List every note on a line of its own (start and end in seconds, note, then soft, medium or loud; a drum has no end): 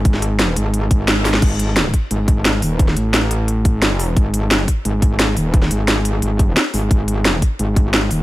0.05 0.55 G#1 loud
0.05 kick loud
0.05 closed hi-hat medium
0.14 snare soft
0.22 closed hi-hat loud
0.39 snare loud
0.39 closed hi-hat medium
0.56 0.89 G#1 loud
0.56 closed hi-hat loud
0.74 closed hi-hat medium
0.91 1.41 G#1 loud
0.91 kick loud
0.91 closed hi-hat loud
1.08 snare loud
1.08 closed hi-hat medium
1.25 snare medium
1.25 open hi-hat medium
1.34 snare medium
1.42 1.92 G#1 loud
1.42 kick loud
1.42 closed hi-hat medium
1.42 crash loud
1.59 closed hi-hat loud
1.76 snare loud
1.76 closed hi-hat medium
1.94 kick medium
1.94 closed hi-hat loud
2.11 2.61 G#1 loud
2.11 closed hi-hat medium
2.28 kick loud
2.28 closed hi-hat loud
2.45 snare loud
2.45 closed hi-hat medium
2.62 2.95 D#1 loud
2.62 open hi-hat medium
2.79 kick loud
2.79 closed hi-hat medium
2.88 snare soft
2.97 4.15 A1 loud
2.97 closed hi-hat loud
3.14 snare loud
3.14 closed hi-hat medium
3.31 closed hi-hat loud
3.48 closed hi-hat medium
3.65 kick loud
3.65 closed hi-hat loud
3.82 snare loud
3.82 closed hi-hat medium
3.99 open hi-hat medium
4.17 4.67 G#1 loud
4.17 kick loud
4.17 closed hi-hat medium
4.34 closed hi-hat loud
4.51 snare loud
4.51 closed hi-hat medium
4.68 kick medium
4.68 closed hi-hat loud
4.85 5.35 G#1 loud
4.85 closed hi-hat medium
5.02 kick loud
5.02 closed hi-hat loud
5.19 snare loud
5.19 closed hi-hat medium
5.37 5.69 D#1 loud
5.37 open hi-hat medium
5.54 kick loud
5.54 closed hi-hat medium
5.62 snare soft
5.71 6.21 G#1 loud
5.71 closed hi-hat medium
5.88 snare loud
5.88 closed hi-hat medium
6.05 closed hi-hat loud
6.22 6.55 G#1 loud
6.22 closed hi-hat medium
6.39 kick loud
6.39 closed hi-hat medium
6.57 snare loud
6.57 closed hi-hat medium
6.74 6.89 G#1 loud
6.74 open hi-hat medium
6.91 7.41 G#1 loud
6.91 kick loud
6.91 closed hi-hat medium
7.08 closed hi-hat medium
7.25 snare loud
7.25 closed hi-hat medium
7.42 kick medium
7.42 closed hi-hat medium
7.59 8.09 G#1 loud
7.59 closed hi-hat medium
7.76 kick loud
7.76 closed hi-hat medium
7.94 snare loud
7.94 closed hi-hat medium
8.11 8.23 D#1 loud
8.11 open hi-hat medium